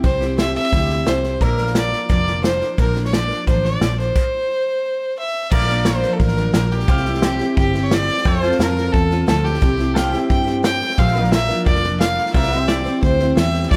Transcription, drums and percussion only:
0.04 kick medium
0.04 snare soft
0.21 snare soft
0.38 snare loud
0.38 hi-hat pedal medium
0.56 snare soft
0.72 kick medium
0.72 snare soft
0.90 snare soft
1.07 snare loud
1.07 hi-hat pedal medium
1.24 snare soft
1.41 kick loud
1.41 snare soft
1.58 snare soft
1.67 snare soft
1.75 snare loud
1.75 hi-hat pedal medium
1.93 snare soft
2.10 kick loud
2.10 snare soft
2.27 snare soft
2.44 snare loud
2.44 hi-hat pedal medium
2.61 snare soft
2.78 kick loud
2.78 snare soft
2.96 snare soft
3.05 snare soft
3.13 snare loud
3.13 hi-hat pedal medium
3.31 snare soft
3.47 kick loud
3.47 snare soft
3.65 snare soft
3.81 snare loud
3.81 hi-hat pedal medium
3.99 snare soft
4.16 kick loud
4.16 crash medium
5.52 kick loud
5.52 snare soft
5.52 crash loud
5.61 snare soft
5.69 snare soft
5.85 snare loud
5.85 hi-hat pedal medium
6.03 snare soft
6.20 kick medium
6.20 snare soft
6.28 snare soft
6.37 snare soft
6.54 snare loud
6.54 hi-hat pedal medium
6.71 snare soft
6.80 snare soft
6.88 kick loud
6.88 snare soft
6.97 snare soft
7.05 snare soft
7.14 snare soft
7.22 snare loud
7.22 hi-hat pedal medium
7.40 snare soft
7.57 kick loud
7.57 snare soft
7.74 snare soft
7.91 snare loud
7.91 hi-hat pedal medium
8.09 snare soft
8.17 snare soft
8.25 kick loud
8.25 snare soft
8.43 snare soft
8.52 snare soft
8.60 snare loud
8.60 hi-hat pedal medium
8.78 snare soft
8.94 kick loud
8.94 snare soft
9.11 snare soft
9.28 snare loud
9.28 hi-hat pedal medium
9.45 snare soft
9.54 snare soft
9.62 kick loud
9.62 snare soft
9.79 snare soft
9.96 snare loud
9.96 hi-hat pedal medium
10.13 snare soft
10.30 kick loud
10.30 snare soft
10.47 snare soft
10.64 snare loud
10.64 hi-hat pedal medium
10.81 snare soft
10.90 snare soft
10.98 kick loud
10.98 snare soft
11.07 snare soft
11.15 snare soft
11.24 snare soft
11.32 snare loud
11.32 hi-hat pedal medium
11.50 snare soft
11.66 kick loud
11.66 snare soft
11.75 snare soft
11.84 snare soft
12.01 snare loud
12.01 hi-hat pedal medium
12.18 snare soft
12.26 snare soft
12.34 kick loud
12.34 snare soft
12.43 snare soft
12.52 snare soft
12.68 snare loud
12.68 hi-hat pedal medium
12.86 snare soft
13.03 kick loud
13.03 snare soft
13.20 snare soft
13.37 snare loud
13.37 hi-hat pedal medium
13.54 snare soft
13.63 snare soft
13.71 kick loud
13.71 snare soft

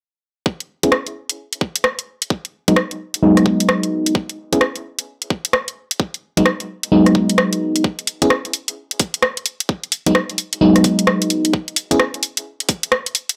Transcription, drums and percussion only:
0.46 kick loud
0.60 closed hi-hat soft
0.83 kick medium
0.83 closed hi-hat medium
0.92 cross-stick loud
1.07 closed hi-hat soft
1.29 closed hi-hat medium
1.53 closed hi-hat soft
1.61 kick loud
1.76 closed hi-hat medium
1.84 cross-stick loud
1.99 closed hi-hat soft
2.22 closed hi-hat medium
2.30 kick loud
2.45 closed hi-hat soft
2.68 kick loud
2.68 closed hi-hat medium
2.76 cross-stick loud
2.91 closed hi-hat soft
3.14 closed hi-hat medium
3.37 cross-stick medium
3.37 closed hi-hat soft
3.46 kick loud
3.60 closed hi-hat medium
3.69 cross-stick loud
3.83 closed hi-hat soft
4.06 closed hi-hat medium
4.15 kick loud
4.29 closed hi-hat soft
4.53 kick loud
4.53 closed hi-hat medium
4.61 cross-stick loud
4.76 closed hi-hat soft
4.99 closed hi-hat medium
5.22 closed hi-hat soft
5.30 kick loud
5.45 closed hi-hat medium
5.53 cross-stick loud
5.68 closed hi-hat soft
5.91 closed hi-hat medium
6.00 kick loud
6.14 closed hi-hat soft
6.37 kick loud
6.37 closed hi-hat medium
6.46 cross-stick loud
6.60 closed hi-hat soft
6.83 closed hi-hat medium
7.06 cross-stick medium
7.06 closed hi-hat soft
7.15 kick loud
7.29 closed hi-hat medium
7.38 cross-stick loud
7.53 closed hi-hat soft
7.76 closed hi-hat medium
7.84 kick loud
7.99 closed hi-hat soft
8.07 open hi-hat medium
8.22 kick loud
8.22 closed hi-hat medium
8.30 cross-stick loud
8.45 closed hi-hat soft
8.53 open hi-hat medium
8.68 closed hi-hat medium
8.91 closed hi-hat soft
8.99 kick loud
8.99 open hi-hat medium
9.14 closed hi-hat medium
9.22 cross-stick loud
9.37 closed hi-hat soft
9.46 open hi-hat medium
9.60 closed hi-hat medium
9.69 kick loud
9.84 closed hi-hat soft
9.92 open hi-hat medium
10.06 kick medium
10.06 closed hi-hat medium
10.15 cross-stick loud
10.30 closed hi-hat soft
10.38 open hi-hat medium
10.53 closed hi-hat medium
10.76 cross-stick medium
10.76 closed hi-hat medium
10.84 kick medium
10.84 open hi-hat loud
10.99 closed hi-hat medium
11.07 cross-stick loud
11.22 closed hi-hat soft
11.30 open hi-hat medium
11.45 closed hi-hat medium
11.53 kick loud
11.68 closed hi-hat soft
11.76 open hi-hat loud
11.91 kick medium
11.91 closed hi-hat medium
12.00 cross-stick loud
12.14 closed hi-hat soft
12.23 open hi-hat medium
12.37 closed hi-hat medium
12.60 closed hi-hat medium
12.69 kick loud
12.69 open hi-hat loud
12.83 closed hi-hat medium
12.92 cross-stick loud
13.06 closed hi-hat medium
13.15 open hi-hat medium
13.29 closed hi-hat medium

